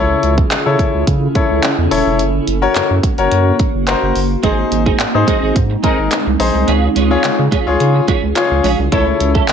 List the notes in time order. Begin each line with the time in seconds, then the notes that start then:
Already playing: C#2 C#3 C#4 E4 A4 C#5
0.23 C#2, closed hi-hat
0.38 kick
0.51 C#3, clap, closed hi-hat
0.66 C#3 E4 A4 C#5
0.79 kick, closed hi-hat
0.94 C#2
1.07 C#3, kick, closed hi-hat
1.35 E4 A4 C#5, kick, closed hi-hat
1.50 C#2
1.63 clap, closed hi-hat
1.78 E2
1.91 D#1 E4 A4 C#5, open hi-hat
2.06 E1
2.19 F#1 A#3 F#4, closed hi-hat
2.47 F#1, closed hi-hat
2.62 F#4 A#4 C#5
2.75 F#2, clap, closed hi-hat
2.90 F#2
3.03 kick, closed hi-hat
3.18 F#1 F#4 A#4 C#5, closed hi-hat
3.32 F#2, closed hi-hat
3.59 kick, closed hi-hat
3.74 F#1
3.87 F#4 A#4 C5, clap, closed hi-hat
4.03 F#1
4.16 F#1, open hi-hat
4.43 G#1 G#3 C4 D#4 G#4 C5, kick, closed hi-hat
4.58 muted clean electric guitar stroke
4.71 G#1, muted clean electric guitar stroke, closed hi-hat
4.86 G#3 C4 D#4 G#4, kick
4.99 G#2, muted clean electric guitar stroke, clap, closed hi-hat
5.14 G#2 D#4 G#4 C5, muted clean electric guitar stroke
5.27 G#3 C4 D#4 G#4, kick, closed hi-hat
5.42 G#1 G#3 C4 D#4 G#4
5.55 G#2, muted clean electric guitar stroke, kick, closed hi-hat
5.70 muted clean electric guitar stroke
5.83 G#3 C4 D#4 G#4 A#4, kick, closed hi-hat
5.98 G#1, muted clean electric guitar stroke
6.11 muted clean electric guitar stroke, clap, closed hi-hat
6.26 C2, muted clean electric guitar stroke
6.40 A#1 D#4 G#4 C5, open hi-hat
6.54 C2, muted clean electric guitar stroke
6.67 C#2 C#3 G#3 C#4 F4 G#4, closed hi-hat
6.95 C#2 G#3 C#4 F4 G#4, closed hi-hat
7.10 G#3 C#4 F4 G#4 C#5
7.24 C#3, clap, closed hi-hat
7.38 C#3, muted clean electric guitar stroke
7.51 G#3 C#4 F4 G#4, kick, closed hi-hat
7.66 C#2 F4 G#4 C#5, muted clean electric guitar stroke
7.80 C#3, muted clean electric guitar stroke, closed hi-hat
7.94 muted clean electric guitar stroke
8.08 G#3 C#4 F4 G#4, kick, closed hi-hat
8.23 C#2, muted clean electric guitar stroke
8.36 F4 G#4 C#5, clap, closed hi-hat
8.51 C#2, muted clean electric guitar stroke
8.64 A#1 G#3 C#4 F4 G#4, open hi-hat
8.79 C2, muted clean electric guitar stroke
8.92 C#2 A3 C#4 E4 A4 C#5, kick, closed hi-hat
9.07 muted clean electric guitar stroke
9.20 C#2, muted clean electric guitar stroke, closed hi-hat
9.35 A3 C#4 E4 A4, kick
9.48 C#3, muted clean electric guitar stroke, clap, closed hi-hat